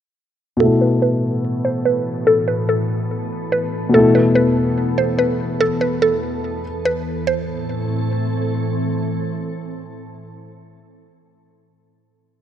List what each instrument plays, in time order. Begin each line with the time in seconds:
0.57 ambient pad A2 E3 B3 A4, grand piano B2 A3, synth pluck A4
0.63 grand piano E4 A4
0.81 synth pluck B4
1.02 synth pluck B4
1.65 synth pluck C5
1.85 synth pluck B4
2.27 synth pluck A4
2.48 synth pluck B4
2.69 synth pluck A4
3.52 synth pluck B4
3.89 grand piano B2 A3
3.94 ambient pad E2, grand piano E4, synth pluck A4
3.98 grand piano A4
4.15 synth pluck B4
4.35 synth pluck B4
4.98 synth pluck C5
5.19 synth pluck B4
5.61 synth pluck A4
5.81 synth pluck B4
6.02 synth pluck A4
6.85 synth pluck B4
7.27 ambient pad A2 E3 C4 A4, synth pluck C5